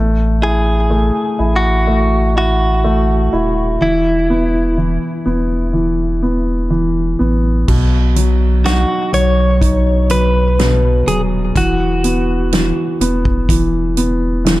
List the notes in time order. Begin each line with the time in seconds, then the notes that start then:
Already playing: A1 A3
0.42 E4 G#4
0.90 A3
1.39 A1 E4
1.56 F#4
1.87 A3
2.36 E4 F#4
2.84 A3
3.33 D#1 E4
3.81 E1 E3 E4
4.30 B3
4.78 E3
5.26 E1 B3
5.73 E3
6.23 B3
6.70 E3
7.19 A1 B3
7.68 B1 B2, kick, crash
8.16 F#3, closed hi-hat
8.65 D#4 F#4, snare, closed hi-hat
9.13 B1 F#3 C#5, closed hi-hat
9.61 D#4, kick, closed hi-hat
10.10 F#3 B4, closed hi-hat
10.59 B2, snare, closed hi-hat
11.07 D#1 F#3 G#4, closed hi-hat
11.55 E1 E3 F#4, kick, closed hi-hat
12.04 B3, closed hi-hat
12.53 E3, snare, closed hi-hat
13.01 E1 B3, closed hi-hat
13.25 kick
13.49 E3, kick, closed hi-hat
13.97 B3, closed hi-hat
14.45 E3, snare, closed hi-hat